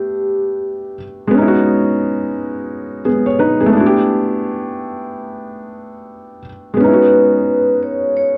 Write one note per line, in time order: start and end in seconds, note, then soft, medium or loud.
0.00 0.93 A3 medium
0.00 0.94 B3 medium
0.00 0.96 D4 medium
0.00 0.98 E4 medium
0.00 0.63 G4 medium
0.00 1.03 G4 medium
1.27 3.65 G#3 medium
1.27 3.00 B3 medium
1.34 3.01 C#4 medium
1.34 3.03 D#4 medium
1.41 1.46 E4 medium
1.48 3.08 F#4 medium
3.05 3.25 B3 soft
3.05 3.25 G#4 medium
3.26 3.38 C#5 medium
3.39 3.59 D#4 medium
3.39 3.59 B4 medium
3.60 3.68 B3 medium
3.60 3.92 G#4 medium
3.66 6.38 A3 medium
3.66 6.40 B3 medium
3.73 6.42 D4 medium
3.73 6.43 E4 medium
3.80 3.84 F#4 medium
3.86 6.48 G4 medium
6.74 8.38 G#3 medium
6.74 8.38 B3 medium
6.80 8.38 C#4 medium
6.80 8.38 D#4 medium
6.80 7.78 B4 medium
6.87 6.91 E4 medium
6.94 8.38 F#4 medium
7.83 8.13 C#5 medium
8.17 8.38 C#5 medium